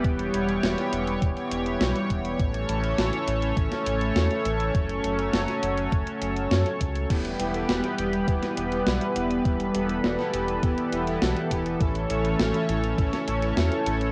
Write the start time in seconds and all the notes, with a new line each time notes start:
Already playing: E3 G3 B3 G4
0.04 E1 C#5, kick, closed hi-hat
0.19 closed hi-hat
0.34 E1, closed hi-hat
0.48 closed hi-hat
0.63 E1, snare, closed hi-hat
0.78 snare, closed hi-hat
0.92 E1, closed hi-hat
1.07 closed hi-hat
1.22 E1, kick, closed hi-hat
1.37 closed hi-hat
1.51 E1, closed hi-hat
1.66 closed hi-hat
1.81 B1, snare, closed hi-hat
1.96 closed hi-hat
2.10 E1, kick, closed hi-hat
2.25 closed hi-hat
2.39 A1 A3 C#4 A4, kick, closed hi-hat
2.54 closed hi-hat
2.69 A1, closed hi-hat
2.84 closed hi-hat
2.98 A1, snare, closed hi-hat
3.13 closed hi-hat
3.28 A1, closed hi-hat
3.42 closed hi-hat
3.57 A1, kick, closed hi-hat
3.72 snare, closed hi-hat
3.87 A1, closed hi-hat
4.01 closed hi-hat
4.16 E2, snare, closed hi-hat
4.31 closed hi-hat
4.45 A1, closed hi-hat
4.60 closed hi-hat
4.75 F#1 F#3 C#4, kick, closed hi-hat
4.89 closed hi-hat
5.04 F#1, closed hi-hat
5.19 closed hi-hat
5.34 F#1, snare, closed hi-hat
5.48 snare, closed hi-hat
5.63 F#1, closed hi-hat
5.78 closed hi-hat
5.92 F#1, kick, closed hi-hat
6.07 closed hi-hat
6.22 F#1, closed hi-hat
6.37 closed hi-hat
6.51 F#2, snare, closed hi-hat
6.66 closed hi-hat
6.81 C#2, kick, closed hi-hat
6.95 closed hi-hat
7.10 E1 E3 G3 B3 E4 G4 B4, kick, closed hi-hat, crash
7.25 closed hi-hat
7.39 E1 B3 E4 G4, closed hi-hat
7.54 B3 E4 A4, closed hi-hat
7.69 E1, snare, closed hi-hat
7.84 B3 E4 G4, closed hi-hat
7.98 E1 B3 E4 G4, closed hi-hat
8.13 closed hi-hat
8.28 E1 B3 E4 G4, kick, closed hi-hat
8.42 snare, closed hi-hat
8.57 E1 B3 E4 G4, closed hi-hat
8.72 B3 E4 G4, closed hi-hat
8.86 B1 B3 E4 G4, snare, closed hi-hat
9.01 closed hi-hat
9.16 E1 B3 E4 G4, closed hi-hat
9.31 B3 E4 G4, closed hi-hat
9.45 E1 B3 E4 G4 A4, kick, closed hi-hat
9.60 closed hi-hat
9.75 E1 B3 E4 G4, closed hi-hat
9.89 B3 E4 A4, closed hi-hat
10.04 E1, snare, closed hi-hat
10.19 B3 E4 G4, snare, closed hi-hat
10.34 E1 B3 E4 G4, closed hi-hat
10.48 closed hi-hat
10.63 E1 B3 E4 G4, kick, closed hi-hat
10.78 closed hi-hat
10.92 E1 B3 E4 G4, closed hi-hat
11.07 B3 E4 G4, closed hi-hat
11.22 B1 B3 E4 G4, snare, closed hi-hat
11.37 closed hi-hat
11.51 E1 B3 E4 G4, kick, closed hi-hat
11.66 B3 E4 G4, closed hi-hat
11.81 A1 A3 C#4 E4 A4 C#5, kick, closed hi-hat
11.95 closed hi-hat
12.10 A1 C#4 E4 A4, closed hi-hat
12.25 C#4 E4 B4, closed hi-hat
12.40 A1, snare, closed hi-hat
12.54 C#4 E4 A4, closed hi-hat
12.69 A1 C#4 E4 A4, closed hi-hat
12.84 closed hi-hat
12.98 A1 C#4 E4 A4, kick, closed hi-hat
13.13 snare, closed hi-hat
13.28 A1 C#4 E4 A4, closed hi-hat
13.42 C#4 E4 A4, closed hi-hat
13.57 E2 C#4 E4 A4, snare, closed hi-hat
13.72 closed hi-hat
13.87 A1 C#4 E4 A4, closed hi-hat
14.01 C#4 E4 A4, closed hi-hat